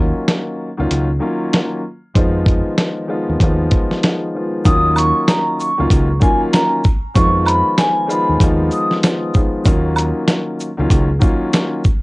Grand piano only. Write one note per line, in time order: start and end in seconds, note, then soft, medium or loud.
0.00 0.67 D#3 medium
0.00 0.68 F#3 medium
0.00 0.68 A#3 medium
0.00 0.68 C#4 medium
0.00 0.69 F4 loud
0.78 1.06 D#3 loud
0.78 1.07 F#3 medium
0.78 1.07 A#3 medium
0.78 1.07 C#4 medium
0.78 1.08 F4 loud
1.19 1.79 D#3 medium
1.19 1.80 F#3 medium
1.19 1.80 A#3 medium
1.19 1.80 C#4 medium
1.19 1.81 F4 loud
2.14 3.03 D#3 loud
2.14 3.03 F3 medium
2.14 3.04 G#3 medium
2.14 3.04 B3 medium
2.14 3.04 F4 loud
3.07 3.38 D#3 medium
3.07 3.38 F3 medium
3.07 3.38 G#3 medium
3.07 3.38 B3 medium
3.07 3.39 F4 loud
3.41 4.00 D#3 loud
3.41 4.00 F3 medium
3.41 4.00 G#3 medium
3.41 4.01 B3 medium
3.41 4.01 F4 loud
4.02 4.32 D#3 medium
4.02 4.32 F3 medium
4.02 4.33 G#3 medium
4.02 4.33 B3 medium
4.02 4.33 F4 medium
4.34 4.63 D#3 medium
4.34 4.64 F3 medium
4.34 4.64 G#3 medium
4.34 4.64 B3 medium
4.34 4.65 F4 medium
4.64 5.67 D#3 medium
4.64 5.68 F#3 medium
4.64 5.68 A#3 medium
4.64 5.68 C#4 medium
4.64 5.69 F4 loud
5.77 6.06 D#3 loud
5.77 6.06 F#3 medium
5.77 6.07 A#3 medium
5.77 6.07 C#4 medium
5.77 6.08 F4 loud
6.19 6.79 D#3 loud
6.19 6.80 F#3 medium
6.19 6.80 A#3 medium
6.19 6.80 C#4 medium
6.19 6.81 F4 loud
7.14 8.03 D#3 loud
7.14 8.03 F3 medium
7.14 8.04 G#3 medium
7.14 8.04 B3 medium
7.14 8.04 F4 loud
8.07 8.37 D#3 loud
8.07 8.38 F3 medium
8.07 8.38 G#3 medium
8.07 8.38 B3 medium
8.07 8.39 F4 loud
8.41 8.99 D#3 loud
8.41 9.00 F3 medium
8.41 9.00 G#3 medium
8.41 9.01 B3 medium
8.41 9.01 F4 loud
9.03 9.32 D#3 medium
9.03 9.33 F3 medium
9.03 9.33 G#3 medium
9.03 9.33 B3 medium
9.03 9.34 F4 medium
9.34 9.63 D#3 medium
9.34 9.64 F3 medium
9.34 9.64 G#3 medium
9.34 9.65 B3 medium
9.34 9.65 F4 medium
9.64 10.67 D#3 loud
9.64 10.68 F#3 medium
9.64 10.68 A#3 medium
9.64 10.68 C#4 medium
9.64 10.69 F4 loud
10.77 11.06 D#3 loud
10.77 11.07 F#3 medium
10.77 11.07 A#3 medium
10.77 11.07 C#4 medium
10.77 11.08 F4 loud
11.19 11.79 D#3 loud
11.19 11.80 F#3 medium
11.19 11.80 A#3 medium
11.19 11.80 C#4 medium
11.19 11.81 F4 loud